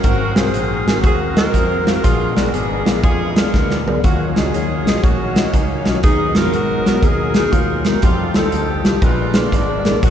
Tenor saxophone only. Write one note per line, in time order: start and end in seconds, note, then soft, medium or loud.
0.04 0.37 A#4 medium
0.36 0.84 C5 medium
1.06 1.20 G#4 loud
1.38 2.07 A#4 loud
2.05 2.36 G#4 medium
2.36 2.55 A#4 medium
2.54 3.02 G#4 medium
3.03 3.50 F4 medium
4.05 4.38 F4 medium
4.37 5.05 G#4 medium
5.04 5.55 F#4 medium
5.54 5.95 D#4 medium
6.04 6.38 G#4 loud
6.36 7.06 A#4 loud
7.04 7.54 G#4 loud
7.52 7.94 F4 medium
8.03 8.33 G4 medium
8.36 8.80 A4 medium
9.04 9.38 B4 medium
9.37 10.05 D5 loud
10.04 10.10 F#4 medium